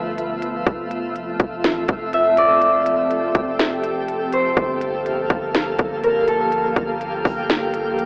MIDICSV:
0, 0, Header, 1, 6, 480
1, 0, Start_track
1, 0, Key_signature, -1, "major"
1, 0, Tempo, 487805
1, 655, Time_signature, 4, 2, 24, 8
1, 7926, End_track
2, 0, Start_track
2, 0, Title_t, "Harp"
2, 0, Program_c, 0, 46
2, 0, Note_on_c, 0, 69, 75
2, 0, Note_on_c, 0, 71, 72
2, 270, Note_off_c, 0, 71, 0
2, 653, Note_off_c, 0, 69, 0
2, 2104, Note_on_c, 0, 76, 77
2, 2342, Note_on_c, 0, 74, 86
2, 3800, Note_off_c, 0, 76, 0
2, 4159, Note_off_c, 0, 74, 0
2, 4263, Note_on_c, 0, 72, 71
2, 5941, Note_on_c, 0, 70, 75
2, 6179, Note_on_c, 0, 69, 74
2, 6211, Note_off_c, 0, 72, 0
2, 6238, Note_off_c, 0, 70, 0
2, 7926, Note_off_c, 0, 69, 0
2, 7926, End_track
3, 0, Start_track
3, 0, Title_t, "Synth texture"
3, 0, Program_c, 1, 99
3, 0, Note_on_c, 1, 57, 78
3, 0, Note_on_c, 1, 65, 73
3, 0, Note_on_c, 1, 71, 74
3, 0, Note_on_c, 1, 76, 82
3, 617, Note_off_c, 1, 71, 0
3, 2536, Note_off_c, 1, 65, 0
3, 2575, Note_on_c, 1, 67, 68
3, 4456, Note_off_c, 1, 57, 0
3, 4456, Note_off_c, 1, 76, 0
3, 4476, Note_off_c, 1, 67, 0
3, 4494, Note_on_c, 1, 69, 71
3, 4494, Note_on_c, 1, 77, 84
3, 4495, Note_on_c, 1, 58, 76
3, 6396, Note_off_c, 1, 69, 0
3, 6415, Note_on_c, 1, 67, 71
3, 7926, Note_off_c, 1, 58, 0
3, 7926, Note_off_c, 1, 67, 0
3, 7926, Note_off_c, 1, 77, 0
3, 7926, End_track
4, 0, Start_track
4, 0, Title_t, "Ambient pad"
4, 0, Program_c, 2, 92
4, 0, Note_on_c, 2, 53, 81
4, 0, Note_on_c, 2, 57, 74
4, 0, Note_on_c, 2, 59, 73
4, 0, Note_on_c, 2, 65, 88
4, 615, Note_off_c, 2, 57, 0
4, 615, Note_off_c, 2, 65, 0
4, 617, Note_off_c, 2, 59, 0
4, 656, Note_on_c, 2, 60, 73
4, 656, Note_on_c, 2, 65, 85
4, 656, Note_on_c, 2, 69, 74
4, 2556, Note_off_c, 2, 65, 0
4, 2577, Note_on_c, 2, 67, 84
4, 4456, Note_off_c, 2, 53, 0
4, 4457, Note_off_c, 2, 60, 0
4, 4477, Note_off_c, 2, 67, 0
4, 4496, Note_on_c, 2, 58, 69
4, 4496, Note_on_c, 2, 67, 89
4, 4497, Note_on_c, 2, 53, 77
4, 7926, Note_off_c, 2, 53, 0
4, 7926, Note_off_c, 2, 58, 0
4, 7926, Note_off_c, 2, 67, 0
4, 7926, Note_off_c, 2, 69, 0
4, 7926, End_track
5, 0, Start_track
5, 0, Title_t, "808-style bass"
5, 0, Program_c, 3, 38
5, 0, Note_on_c, 3, 31, 100
5, 616, Note_off_c, 3, 31, 0
5, 655, Note_on_c, 3, 29, 116
5, 1346, Note_off_c, 3, 29, 0
5, 1375, Note_on_c, 3, 29, 106
5, 1615, Note_on_c, 3, 33, 102
5, 1630, Note_off_c, 3, 29, 0
5, 1843, Note_off_c, 3, 33, 0
5, 1858, Note_on_c, 3, 29, 105
5, 3258, Note_off_c, 3, 29, 0
5, 3296, Note_on_c, 3, 29, 101
5, 4456, Note_off_c, 3, 29, 0
5, 4495, Note_on_c, 3, 31, 116
5, 5187, Note_off_c, 3, 31, 0
5, 5216, Note_on_c, 3, 31, 103
5, 5676, Note_off_c, 3, 31, 0
5, 5699, Note_on_c, 3, 31, 106
5, 6619, Note_off_c, 3, 31, 0
5, 6655, Note_on_c, 3, 31, 105
5, 7116, Note_off_c, 3, 31, 0
5, 7136, Note_on_c, 3, 31, 107
5, 7926, Note_off_c, 3, 31, 0
5, 7926, End_track
6, 0, Start_track
6, 0, Title_t, "Drums"
6, 179, Note_on_c, 9, 42, 74
6, 277, Note_off_c, 9, 42, 0
6, 416, Note_on_c, 9, 42, 78
6, 514, Note_off_c, 9, 42, 0
6, 655, Note_on_c, 9, 36, 110
6, 656, Note_on_c, 9, 42, 67
6, 754, Note_off_c, 9, 36, 0
6, 754, Note_off_c, 9, 42, 0
6, 896, Note_on_c, 9, 42, 80
6, 994, Note_off_c, 9, 42, 0
6, 1138, Note_on_c, 9, 42, 62
6, 1237, Note_off_c, 9, 42, 0
6, 1375, Note_on_c, 9, 42, 81
6, 1376, Note_on_c, 9, 36, 97
6, 1473, Note_off_c, 9, 42, 0
6, 1474, Note_off_c, 9, 36, 0
6, 1616, Note_on_c, 9, 42, 70
6, 1617, Note_on_c, 9, 38, 111
6, 1714, Note_off_c, 9, 42, 0
6, 1715, Note_off_c, 9, 38, 0
6, 1854, Note_on_c, 9, 42, 75
6, 1858, Note_on_c, 9, 36, 90
6, 1952, Note_off_c, 9, 42, 0
6, 1957, Note_off_c, 9, 36, 0
6, 2098, Note_on_c, 9, 42, 71
6, 2197, Note_off_c, 9, 42, 0
6, 2335, Note_on_c, 9, 42, 75
6, 2433, Note_off_c, 9, 42, 0
6, 2574, Note_on_c, 9, 42, 66
6, 2673, Note_off_c, 9, 42, 0
6, 2815, Note_on_c, 9, 42, 79
6, 2913, Note_off_c, 9, 42, 0
6, 3057, Note_on_c, 9, 42, 61
6, 3156, Note_off_c, 9, 42, 0
6, 3294, Note_on_c, 9, 42, 83
6, 3296, Note_on_c, 9, 36, 92
6, 3393, Note_off_c, 9, 42, 0
6, 3394, Note_off_c, 9, 36, 0
6, 3536, Note_on_c, 9, 42, 69
6, 3537, Note_on_c, 9, 38, 116
6, 3634, Note_off_c, 9, 42, 0
6, 3636, Note_off_c, 9, 38, 0
6, 3774, Note_on_c, 9, 42, 73
6, 3873, Note_off_c, 9, 42, 0
6, 4019, Note_on_c, 9, 42, 74
6, 4117, Note_off_c, 9, 42, 0
6, 4256, Note_on_c, 9, 42, 80
6, 4354, Note_off_c, 9, 42, 0
6, 4495, Note_on_c, 9, 36, 108
6, 4496, Note_on_c, 9, 42, 66
6, 4594, Note_off_c, 9, 36, 0
6, 4594, Note_off_c, 9, 42, 0
6, 4736, Note_on_c, 9, 42, 75
6, 4835, Note_off_c, 9, 42, 0
6, 4979, Note_on_c, 9, 42, 65
6, 5077, Note_off_c, 9, 42, 0
6, 5216, Note_on_c, 9, 36, 95
6, 5216, Note_on_c, 9, 42, 80
6, 5314, Note_off_c, 9, 42, 0
6, 5315, Note_off_c, 9, 36, 0
6, 5457, Note_on_c, 9, 42, 67
6, 5458, Note_on_c, 9, 38, 115
6, 5555, Note_off_c, 9, 42, 0
6, 5556, Note_off_c, 9, 38, 0
6, 5694, Note_on_c, 9, 42, 75
6, 5699, Note_on_c, 9, 36, 91
6, 5793, Note_off_c, 9, 42, 0
6, 5797, Note_off_c, 9, 36, 0
6, 5939, Note_on_c, 9, 42, 74
6, 6038, Note_off_c, 9, 42, 0
6, 6177, Note_on_c, 9, 42, 77
6, 6275, Note_off_c, 9, 42, 0
6, 6416, Note_on_c, 9, 42, 66
6, 6515, Note_off_c, 9, 42, 0
6, 6655, Note_on_c, 9, 36, 86
6, 6656, Note_on_c, 9, 42, 78
6, 6753, Note_off_c, 9, 36, 0
6, 6755, Note_off_c, 9, 42, 0
6, 6898, Note_on_c, 9, 42, 63
6, 6997, Note_off_c, 9, 42, 0
6, 7135, Note_on_c, 9, 46, 59
6, 7136, Note_on_c, 9, 36, 94
6, 7233, Note_off_c, 9, 46, 0
6, 7234, Note_off_c, 9, 36, 0
6, 7376, Note_on_c, 9, 42, 71
6, 7377, Note_on_c, 9, 38, 117
6, 7474, Note_off_c, 9, 42, 0
6, 7476, Note_off_c, 9, 38, 0
6, 7614, Note_on_c, 9, 42, 73
6, 7712, Note_off_c, 9, 42, 0
6, 7858, Note_on_c, 9, 42, 73
6, 7926, Note_off_c, 9, 42, 0
6, 7926, End_track
0, 0, End_of_file